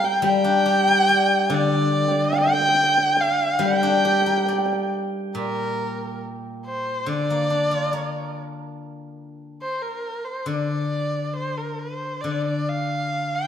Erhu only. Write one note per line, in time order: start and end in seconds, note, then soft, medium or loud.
0.05 0.24 G5 loud
0.26 1.55 G5 loud
1.54 2.40 D5 loud
2.38 3.22 G5 loud
3.21 3.64 F5 loud
3.62 4.93 G5 loud
5.36 6.19 A#4 medium
6.66 7.10 C5 medium
7.08 8.35 D5 loud
9.62 9.83 C5 medium
9.82 10.26 A#4 medium
10.24 10.49 C5 medium
10.47 11.36 D5 medium
11.36 11.59 C5 medium
11.57 11.81 A#4 medium
11.79 12.23 C5 medium
12.21 12.45 D5 medium
12.46 12.70 D5 medium
12.69 13.36 F5 medium
13.35 13.47 G5 medium